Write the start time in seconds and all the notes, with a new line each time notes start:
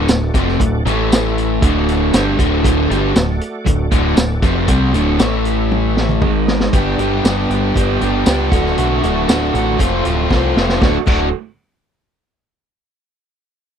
Already playing: A3 F#4 D5
0.08 D1 D2 A2, snare, closed hi-hat, tambourine
0.34 F1 F2 C3 F3, kick, snare, closed hi-hat
0.48 snare
0.60 D1 D2 A2, kick, closed hi-hat
0.85 A1 A2 E3 A3 E4 E5, closed hi-hat
1.12 snare, closed hi-hat, tambourine
1.38 closed hi-hat
1.61 D1 D2 A2 D3 A3 F#4 D5, kick, closed hi-hat
1.89 closed hi-hat
2.13 G1 G2 D3 G3, snare, closed hi-hat, tambourine
2.38 D1 D2 A2 D3, kick, closed hi-hat
2.63 D1 D2 A2 D3, kick, closed hi-hat
2.90 G1 G2 D3 G3, closed hi-hat
3.15 D1 D2 A2, snare, closed hi-hat, tambourine
3.41 closed hi-hat
3.65 D1 D2 A2, kick, closed hi-hat
3.91 D1 D2 A2 D3, kick, closed hi-hat
4.16 D1 D2 A2, snare, closed hi-hat, tambourine
4.42 F1 F2 C3 F3, kick, snare, closed hi-hat
4.68 C2 C3 G3 C4, kick, closed hi-hat
4.93 D1 D2 A2 D3, closed hi-hat
5.19 A1 A2 E3 A3 E4 E5, snare, closed hi-hat, tambourine
5.45 closed hi-hat
5.71 high tom
5.97 snare
6.09 mid tom
6.21 G#1 G#2 D#3 G#3 D#4 D#5, kick
6.48 snare
6.60 snare
6.73 G1 G2 D3 G3 B3 D4 G4 D5, kick, closed hi-hat
6.98 G1 G3 B3 D4 G4, closed hi-hat
7.24 G1 G2 D3 G3 B3 D4 G4, snare, closed hi-hat, tambourine
7.49 G1 G3 B3 D4 G4, closed hi-hat
7.75 G1 G2 D3 G3 B3 D4 G4, kick, closed hi-hat
8.01 G1 G3 B3 D4 G4, closed hi-hat
8.26 C#2 G3 B3 D4 G4, snare, closed hi-hat, tambourine
8.50 D1 D2 A2 D3 A3 D4 F#4 A4 D5, kick, snare, closed hi-hat
8.54 F#3
8.66 snare
8.76 B1 D2 A2 D3 A3 F#4, closed hi-hat
9.01 D1 D3 A3 F#4 A4, closed hi-hat
9.05 A3 D4
9.27 D1 D2 A2 D3 F#3 A3 F#4, snare, closed hi-hat, tambourine
9.31 D4 A4
9.53 A1 D3 A3 D4 F#4 A4, closed hi-hat
9.78 F1 F2 C3 F3 A3 A#3 C4 F4 F#4 A4 C#5, kick, closed hi-hat
9.98 A3 F4 C5
10.04 D1 F3 A3 C4 F4, closed hi-hat
10.29 C2 F3 A3 C4 F4 A4, kick, snare
10.56 F1 F3 A3 C4 F4, snare
10.69 snare
10.81 D1 D2 A2 D3 F#3 A3 D4 F#4 A4, kick, snare
10.85 A3 F#4 D5
11.06 D1 D2 A2 D3 F#3 A3 D4 F#4 A4, kick, crash